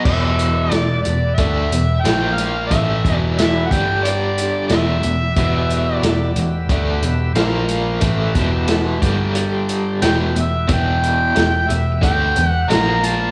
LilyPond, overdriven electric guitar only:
\new Staff \with { instrumentName = "Overdriven electric guitar" } { \clef bass \time 4/4 \key e \minor \tempo 4 = 90 <e, b, e>4 <e, b,>8 <e, b,>8 <d a d'>8 <e, b,>8 <ais, eis ais>4 | <a, e a>8 <e, b, e>4 <g, d g>4. <e, b, e>8 <e, b,>8 | <e, b, e>4 <e, b,>8 <e, b,>8 <d a d'>8 <e, b,>8 <ais, eis ais>4 | <a, e a>8 <e, b, e>4 <g, d g>4. <e, b, e>8 <e, b,>8 |
<e, b, e>4 <e, b,>8 <e, b,>8 <d a d'>8 <e, b,>8 <ais, eis ais>4 | }